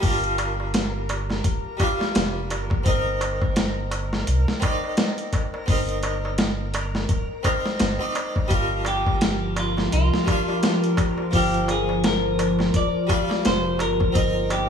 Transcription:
Already playing: synth texture A#4
0.00 sub bass G1, harpsichord G3 D4 F4, kick, open hi-hat, darbuka tek
0.06 harpsichord A#4
0.24 closed hi-hat
0.38 closed hi-hat, darbuka tek
0.60 darbuka tek
0.74 snare, closed hi-hat, darbuka tek
1.09 closed hi-hat, darbuka tek
1.30 snare, darbuka tek
1.44 sub bass D1, kick, closed hi-hat, darbuka tek
1.77 harpsichord G3 D4 F4, kick, closed hi-hat, darbuka tek
1.83 harpsichord D5
2.01 snare, darbuka tek
2.15 sub bass F1, snare, closed hi-hat, darbuka tek
2.50 sub bass G1, closed hi-hat, darbuka tek
2.70 kick, darbuka tek
2.83 sub bass G1, harpsichord C4 D#4, kick, closed hi-hat, darbuka tek
2.90 harpsichord A#4
3.21 closed hi-hat, darbuka tek
3.42 kick, darbuka tek
3.56 snare, closed hi-hat, darbuka tek
3.91 closed hi-hat, darbuka tek
4.13 snare, darbuka tek
4.27 sub bass C2, closed hi-hat, darbuka tek
4.48 snare
4.60 harpsichord C4 D#4, kick, closed hi-hat, darbuka tek
4.66 harpsichord D5
4.84 darbuka tek
4.97 snare, closed hi-hat, darbuka tek
5.18 closed hi-hat
5.33 kick, closed hi-hat, darbuka tek
5.54 darbuka tek
5.66 sub bass G1, harpsichord C4 D#4, kick, open hi-hat, darbuka tek
5.72 harpsichord A#4
5.89 closed hi-hat
6.03 closed hi-hat, darbuka tek
6.25 darbuka tek
6.38 snare, closed hi-hat, darbuka tek
6.74 closed hi-hat, darbuka tek
6.95 snare, darbuka tek
7.09 sub bass D1, kick, closed hi-hat, darbuka tek
7.43 harpsichord C4 D#4 A#4, kick, closed hi-hat, darbuka tek
7.66 snare, darbuka tek
7.80 sub bass G1, snare, closed hi-hat, darbuka tek
7.99 harpsichord C4 D#4 D5
8.15 closed hi-hat, darbuka tek
8.36 kick, darbuka tek
8.48 sub bass G1, ambient pad F3 F4 A#4, harpsichord G3 D4 F4, kick, closed hi-hat, darbuka tek
8.54 harpsichord A#4
8.85 clean electric guitar G4, closed hi-hat, darbuka tek
9.07 kick, darbuka tek
9.21 snare, closed hi-hat, darbuka tek
9.56 clean electric guitar F4, closed hi-hat, darbuka tek
9.77 snare, darbuka tek
9.91 sub bass C2, clean electric guitar F4, closed hi-hat, darbuka tek
10.14 snare
10.24 harpsichord G3 D4, kick, closed hi-hat, darbuka tek
10.29 harpsichord F4 D5
10.49 darbuka tek
10.62 snare, closed hi-hat, darbuka tek
10.84 closed hi-hat
10.97 kick, closed hi-hat, darbuka tek
11.18 darbuka tek
11.31 sub bass G1, harpsichord F3 D4, kick, open hi-hat, darbuka tek
11.35 harpsichord F4 A#4, clean electric guitar G4
11.54 closed hi-hat
11.68 clean electric guitar G#4, closed hi-hat, darbuka tek
11.89 darbuka tek
12.04 clean electric guitar A#4, snare, closed hi-hat, darbuka tek
12.39 closed hi-hat, darbuka tek
12.59 snare, darbuka tek
12.74 sub bass D1, clean electric guitar D5, kick, closed hi-hat, darbuka tek
13.07 harpsichord G3 D4, kick, closed hi-hat, darbuka tek
13.11 harpsichord F4 D5
13.30 snare, darbuka tek
13.45 sub bass F1, clean electric guitar C5, snare, closed hi-hat, darbuka tek
13.79 sub bass G1, clean electric guitar A#4, closed hi-hat, darbuka tek
14.00 kick, darbuka tek
14.12 sub bass G1, ambient pad A#3 C4 D#4, harpsichord C4 D#4, kick, closed hi-hat, darbuka tek
14.19 harpsichord A#4
14.50 clean electric guitar G4, closed hi-hat, darbuka tek

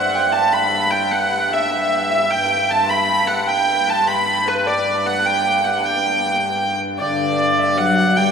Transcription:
Already playing: harmonium G2, harp C5 D5 E5 F#5, hurdy-gurdy F#5
0.14 harp G5
0.32 hurdy-gurdy A5
0.53 harp B5, hurdy-gurdy B5
0.91 hurdy-gurdy G5, harp G5
1.10 harp F#5, hurdy-gurdy F#5
1.25 harp F#5
1.37 harp F#5
1.51 harp E5, hurdy-gurdy E5
1.66 harp F#5
1.70 hurdy-gurdy E5, harp E5
2.10 harp E5, hurdy-gurdy E5
2.30 harmonium G2, hurdy-gurdy G5, harp G5
2.69 harp A5, hurdy-gurdy A5
2.83 harp B5 C6
2.89 hurdy-gurdy B5
3.27 hurdy-gurdy F#5, harp F#5
3.47 harp G5, hurdy-gurdy G5
3.87 harp A5, hurdy-gurdy A5
4.02 harp C6
4.07 hurdy-gurdy B5, harp B5
4.45 harp B4, hurdy-gurdy B4
4.66 harp D5, hurdy-gurdy D5
5.06 hurdy-gurdy F#5
5.25 harp G5, hurdy-gurdy G5
5.44 harp G5
5.62 harp F#5, hurdy-gurdy F#5
5.78 harp A5
5.84 harp G5, hurdy-gurdy G5
6.99 harmonium G2, viola da gamba D3, hurdy-gurdy D5, harp D5
7.59 harp E5
7.77 viola da gamba F#3, hurdy-gurdy F#5, harp F#5
7.99 harp F#5
8.17 viola da gamba G3, hurdy-gurdy G5, harp G5

